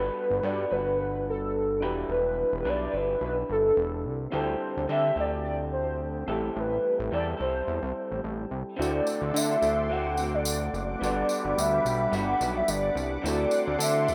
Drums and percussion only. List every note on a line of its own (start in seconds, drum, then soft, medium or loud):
8.82 tambourine medium
9.07 tambourine medium
9.36 tambourine medium
9.62 tambourine soft
10.17 tambourine soft
10.45 tambourine medium
10.74 tambourine soft
11.04 tambourine soft
11.29 tambourine medium
11.58 tambourine medium
11.86 tambourine soft
12.13 tambourine soft
12.41 tambourine soft
12.68 tambourine medium
12.97 tambourine soft
13.26 tambourine soft
13.51 tambourine medium
13.80 tambourine medium
14.08 tambourine soft